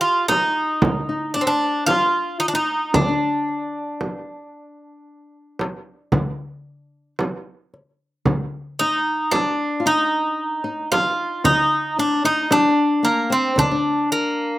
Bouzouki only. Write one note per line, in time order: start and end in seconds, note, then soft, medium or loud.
0.01 0.28 F4 medium
0.28 1.34 D#4 medium
1.34 1.42 D4 medium
1.41 1.48 C4 medium
1.47 1.86 D4 medium
1.86 2.39 F4 medium
2.40 2.48 D#4 medium
2.48 2.54 D4 medium
2.55 2.95 D#4 medium
2.94 7.15 D4 medium
8.79 9.34 D#4 medium
9.31 9.87 D4 medium
9.87 10.91 D#4 medium
10.92 11.45 F4 medium
11.45 11.99 D#4 medium
11.99 12.25 D4 medium
12.25 12.52 D#4 medium
12.52 13.06 D4 medium
13.05 13.32 A#3 medium
13.32 13.58 C4 medium
13.59 14.12 D4 medium
14.12 14.59 A#3 medium